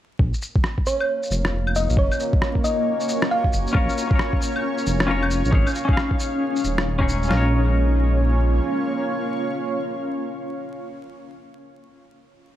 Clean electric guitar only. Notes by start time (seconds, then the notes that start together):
3.73 C#4 F4 A#4
3.77 C#5
4.07 C#4 F4
4.13 A#4 C#5
5.07 C#4 F4 A#4
5.11 C#5
5.51 C#4 D#4 G#4 C#5
5.85 C#4 D#4
5.90 G#4 F5
6.99 C#4 D#4 G#4 C#5
7.25 C#4 F4
7.33 A#4 C#5